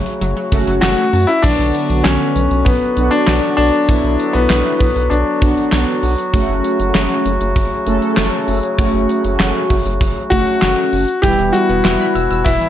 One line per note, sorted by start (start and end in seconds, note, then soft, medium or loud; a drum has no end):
0.00 1.27 C#3 medium
0.00 1.27 F#3 medium
0.00 1.27 A3 medium
0.00 1.27 F#4 medium
0.06 closed hi-hat medium
0.21 0.34 F#1 loud
0.21 0.32 F#3 medium
0.21 closed hi-hat medium
0.37 0.47 F#3 medium
0.52 0.65 F#1 loud
0.52 0.62 A3 medium
0.52 1.24 A3 medium
0.52 1.24 C#4 medium
0.52 1.24 F#4 loud
0.52 kick loud
0.52 closed hi-hat medium
0.67 0.80 F#1 loud
0.67 0.78 F#3 medium
0.67 closed hi-hat medium
0.81 0.95 F#1 loud
0.81 0.93 F#3 medium
0.81 1.25 F#4 loud
0.81 snare loud
0.81 clap medium
0.81 closed hi-hat medium
0.98 1.08 C#4 medium
1.13 1.26 F#2 loud
1.13 1.24 A5 medium
1.13 open hi-hat medium
1.27 1.39 C#4 medium
1.27 1.44 E4 loud
1.27 closed hi-hat soft
1.42 1.57 B1 loud
1.42 2.40 D3 medium
1.42 6.30 D3 medium
1.42 11.06 F#3 medium
1.42 2.40 B3 medium
1.42 6.30 B3 medium
1.42 2.00 D4 loud
1.42 2.40 F#4 medium
1.42 11.06 F#4 medium
1.42 kick loud
1.42 crash loud
1.59 1.72 B1 loud
1.75 closed hi-hat medium
1.90 2.03 B1 loud
1.90 closed hi-hat medium
2.04 2.18 B1 loud
2.04 2.67 C#4 loud
2.04 snare loud
2.04 clap loud
2.04 closed hi-hat medium
2.36 2.48 B1 medium
2.36 closed hi-hat medium
2.51 2.64 B1 loud
2.51 closed hi-hat medium
2.65 2.79 B1 loud
2.65 3.08 B3 medium
2.65 kick loud
2.65 closed hi-hat medium
2.97 3.10 B1 loud
2.97 3.69 B3 medium
2.97 3.69 D4 medium
2.97 3.69 F#4 medium
2.97 closed hi-hat medium
3.11 3.54 D4 loud
3.11 closed hi-hat medium
3.27 3.40 B1 loud
3.27 snare loud
3.27 clap medium
3.27 closed hi-hat medium
3.57 3.71 B1 loud
3.57 4.36 D4 loud
3.57 open hi-hat medium
3.74 closed hi-hat soft
3.89 4.01 B1 loud
3.89 4.85 B3 medium
3.89 4.85 D4 medium
3.89 4.85 E4 medium
3.89 kick loud
3.89 closed hi-hat loud
4.04 4.17 B1 loud
4.19 closed hi-hat medium
4.33 4.47 B1 loud
4.33 4.78 B3 loud
4.33 closed hi-hat medium
4.50 4.63 B1 loud
4.50 snare loud
4.50 clap loud
4.50 closed hi-hat medium
4.79 4.93 B1 loud
4.79 5.11 B3 medium
4.79 kick medium
4.79 open hi-hat medium
4.96 5.09 B1 loud
4.96 closed hi-hat medium
5.10 5.24 B1 loud
5.10 5.98 D4 medium
5.10 closed hi-hat medium
5.42 5.55 B1 loud
5.42 6.14 B3 medium
5.42 6.14 D4 medium
5.42 6.14 F#4 medium
5.42 kick loud
5.42 closed hi-hat medium
5.57 closed hi-hat medium
5.72 5.85 B1 loud
5.72 snare loud
5.72 clap medium
5.72 closed hi-hat medium
6.03 6.16 B1 medium
6.03 open hi-hat medium
6.18 closed hi-hat medium
6.34 6.46 F#1 loud
6.34 11.06 C#3 medium
6.34 11.06 A3 medium
6.34 7.30 A3 medium
6.34 7.30 C#4 medium
6.34 7.30 F#4 loud
6.34 kick loud
6.34 closed hi-hat loud
6.49 6.62 F#1 loud
6.64 closed hi-hat medium
6.80 6.92 F#1 loud
6.80 closed hi-hat medium
6.95 7.08 F#1 loud
6.95 snare loud
6.95 clap loud
6.95 closed hi-hat medium
7.25 7.38 F#1 loud
7.25 closed hi-hat medium
7.41 7.54 F#1 loud
7.41 closed hi-hat medium
7.56 7.69 F#1 loud
7.56 kick loud
7.56 closed hi-hat medium
7.87 7.99 F#1 loud
7.87 8.59 A3 medium
7.87 8.59 C#4 medium
7.87 8.59 A4 loud
7.87 closed hi-hat medium
8.02 closed hi-hat medium
8.17 8.30 F#1 loud
8.17 snare loud
8.17 clap medium
8.17 closed hi-hat medium
8.48 8.61 F#1 loud
8.48 open hi-hat medium
8.63 closed hi-hat medium
8.78 8.91 F#1 loud
8.78 9.75 A3 medium
8.78 9.75 C#4 medium
8.78 9.75 F#4 loud
8.78 kick loud
8.78 closed hi-hat medium
8.94 9.07 F#1 loud
9.09 closed hi-hat medium
9.24 9.37 F#1 loud
9.24 closed hi-hat medium
9.40 9.53 F#1 loud
9.40 snare loud
9.40 clap loud
9.40 closed hi-hat medium
9.70 9.83 F#1 loud
9.70 kick medium
9.70 open hi-hat medium
9.86 9.98 F#1 loud
9.86 closed hi-hat medium
10.01 10.14 F#1 loud
10.01 kick loud
10.01 closed hi-hat medium
10.30 10.44 F#1 loud
10.30 11.04 A3 medium
10.30 11.04 C#4 medium
10.30 11.19 F#4 loud
10.30 11.04 F#4 medium
10.30 kick loud
10.30 closed hi-hat medium
10.47 closed hi-hat medium
10.62 10.75 F#1 loud
10.62 snare loud
10.62 clap medium
10.62 closed hi-hat medium
10.93 11.06 F#1 loud
10.93 open hi-hat medium
11.08 closed hi-hat soft
11.22 11.36 E1 loud
11.22 11.34 E3 medium
11.22 12.69 E3 medium
11.22 12.20 G3 medium
11.22 12.69 G3 medium
11.22 12.20 B3 medium
11.22 12.69 B3 medium
11.22 12.20 E4 medium
11.22 12.69 E4 medium
11.22 11.51 G4 loud
11.22 kick loud
11.22 closed hi-hat medium
11.39 11.52 E1 loud
11.39 11.49 E3 medium
11.53 11.64 G3 medium
11.53 12.48 F#4 loud
11.53 closed hi-hat medium
11.69 11.82 E1 loud
11.69 11.80 B3 medium
11.69 closed hi-hat medium
11.85 11.97 E1 loud
11.85 11.95 E4 medium
11.85 snare loud
11.85 clap loud
11.85 closed hi-hat medium
12.00 12.10 B5 medium
12.15 12.28 E1 medium
12.15 12.26 E6 loud
12.15 closed hi-hat medium
12.31 12.43 E1 loud
12.31 12.41 E6 medium
12.31 closed hi-hat medium
12.45 12.59 E1 loud
12.45 12.56 E3 medium
12.45 12.69 E4 loud
12.45 kick loud
12.45 closed hi-hat medium
12.61 12.69 E3 medium